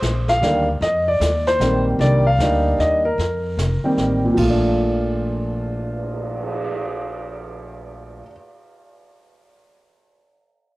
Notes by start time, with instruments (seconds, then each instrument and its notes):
Already playing: grand piano C5
0.02 upright bass A#1, snare, hi-hat pedal
0.28 grand piano F5, snare
0.41 upright bass D2, grand piano D#3 G3 A#3 D4, snare
0.81 upright bass F2, grand piano D#5, brush sweep, snare
1.08 grand piano D5
1.20 upright bass D#2, snare, hi-hat pedal
1.47 grand piano C5, snare
1.60 upright bass A#1, grand piano D#3 G3 A#3 C4, snare, hi-hat pedal
1.99 upright bass C2, grand piano D#3 G3 A#3 D4 D5, brush sweep, snare
2.27 grand piano F5
2.38 upright bass D2, grand piano G3 A#3 D4 D#4, snare, hi-hat pedal
2.78 upright bass D#2, grand piano D#5, snare
3.05 grand piano A#4
3.18 upright bass F2, brush sweep, snare
3.57 upright bass F1, snare, hi-hat pedal
3.84 grand piano D#3 G3 A#3 C4
3.97 upright bass A1, snare
4.25 grand piano A#2
4.34 upright bass A#1, grand piano F3, kick, crash
4.38 grand piano A3 F4
4.50 grand piano D4
4.63 cymbal swell